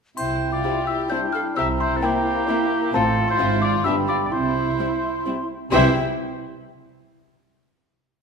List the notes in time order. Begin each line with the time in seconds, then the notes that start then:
0.17 C2 C3 E4 C5 G5 C6, triangle
0.52 F4 D5 D6
0.63 G3 C4 E4
0.87 G4 E5 E6
1.09 G3 C4 D4 E4 C5 G5 G6
1.33 A4 F5 F6
1.56 C2 C3 C4 G4 E5 A#5 E6
1.80 E4 C5 C6
1.97 A4
2.02 A#3 C4 E4 G4 G5
2.47 A#3 C4 E4
2.93 A1 A2 A3 C4 F4 A4 A5 C6
3.28 E4 C5 C6
3.38 G#1 G#2 F3 C4 F4
3.42 F4
3.62 F4 D5 D6
3.84 G1 G2 G3 B3 D4 G4 E5 B5 E6
4.08 F4 D5 D6
4.26 D5
4.31 C2 C3 E4 C5 C6
4.79 G3 C4 E4
5.25 G3 C4 E4
5.71 C2 C3 E3 G3 C4 E4 G4 C5 E5 G5 C6